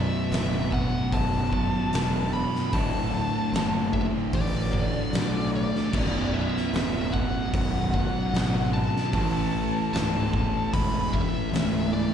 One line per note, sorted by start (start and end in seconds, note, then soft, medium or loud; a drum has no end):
0.00 0.69 B1 medium
0.00 0.70 F#2 loud
0.00 0.70 B2 loud
0.00 0.69 E5 medium
0.31 0.84 D1 loud
0.31 snare loud
0.31 open hi-hat medium
0.71 1.90 B1 medium
0.71 1.90 F#2 medium
0.71 1.89 B2 medium
0.71 1.14 F#5 medium
0.71 kick medium
1.12 1.65 B0 medium
1.12 2.33 A5 loud
1.12 kick loud
1.12 open hi-hat medium
1.51 1.90 B1 medium
1.51 1.91 F#2 medium
1.51 1.90 B2 medium
1.51 kick medium
1.91 2.45 E1 medium
1.91 2.70 B1 medium
1.91 2.70 F#2 medium
1.91 2.71 B2 loud
1.91 open hi-hat medium
1.95 snare loud
2.33 2.74 B5 loud
2.56 snare soft
2.71 3.25 D1 loud
2.71 3.90 D2 medium
2.71 3.90 A2 medium
2.71 3.91 D3 medium
2.71 3.90 A5 loud
2.71 kick loud
2.71 open hi-hat medium
3.52 4.04 F#1 loud
3.52 snare loud
3.52 open hi-hat medium
3.92 5.11 D2 medium
3.92 5.11 A2 medium
3.92 5.10 D3 medium
3.92 4.04 E5 medium
3.92 kick medium
4.33 4.86 A1 medium
4.33 5.50 D5 medium
4.33 kick loud
4.33 open hi-hat medium
4.71 5.09 D2 medium
4.71 5.11 A2 medium
4.71 5.10 D3 medium
4.71 kick medium
5.12 5.65 B1 loud
5.12 5.90 D2 medium
5.12 5.91 A2 medium
5.12 5.92 D3 medium
5.12 snare loud
5.12 open hi-hat medium
5.56 6.33 D5 medium
5.76 snare soft
5.91 6.46 B0 loud
5.91 7.10 B1 medium
5.91 7.11 F#2 loud
5.91 7.11 B2 loud
5.91 kick loud
5.91 crash loud
6.34 7.16 E5 medium
6.57 snare soft
6.73 7.25 D1 loud
6.73 snare loud
6.73 open hi-hat medium
7.13 8.32 B1 medium
7.13 8.32 F#2 medium
7.13 8.31 B2 medium
7.13 8.69 F#5 loud
7.13 kick medium
7.53 8.06 B0 loud
7.53 kick loud
7.53 open hi-hat medium
7.92 8.31 B1 medium
7.92 8.31 F#2 medium
7.92 8.30 B2 medium
7.92 kick medium
8.33 8.85 G#1 loud
8.33 9.11 B1 medium
8.33 9.12 F#2 medium
8.33 9.12 B2 loud
8.33 snare loud
8.33 open hi-hat medium
8.73 9.92 A5 loud
8.96 snare soft
9.12 9.66 A1 loud
9.12 10.30 A2 loud
9.12 10.31 E3 loud
9.12 10.32 A3 loud
9.12 kick loud
9.12 open hi-hat medium
9.93 10.45 C#1 medium
9.93 10.76 A5 loud
9.93 snare loud
9.93 open hi-hat medium
10.33 11.51 A2 medium
10.33 11.52 E3 medium
10.33 11.51 A3 loud
10.33 kick medium
10.73 11.26 E1 medium
10.73 11.15 B5 loud
10.73 kick loud
10.73 open hi-hat medium
11.12 11.51 A2 medium
11.12 11.51 E3 medium
11.12 11.50 A3 medium
11.12 11.93 E5 medium
11.12 kick medium
11.52 12.05 C#1 loud
11.52 12.14 A2 medium
11.52 12.14 E3 loud
11.52 12.14 A3 medium
11.52 snare loud
11.52 open hi-hat medium
11.93 12.14 D5 medium